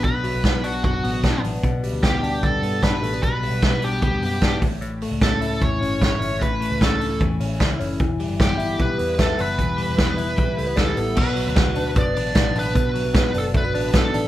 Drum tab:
CC |--------|--------|--------|--------|
HH |xoxoxoxo|xoxoxoxo|xoxoxoxo|xoxoxoxo|
SD |--o---o-|--o---o-|--o---o-|--o---o-|
BD |o-o-o-o-|o-o-o-o-|o-o-o-oo|--o-o-o-|

CC |--------|--------|--------|x-------|
HH |xoxoxoxo|xoxoxoxo|xoxoxoxo|-oxoxoxo|
SD |--o---o-|--o---o-|--o---o-|--o---o-|
BD |o-o-o-o-|o-o-o-o-|o-o-o-o-|o-o-o-o-|

CC |--------|
HH |xoxoxoxo|
SD |--o---o-|
BD |o-o-o-o-|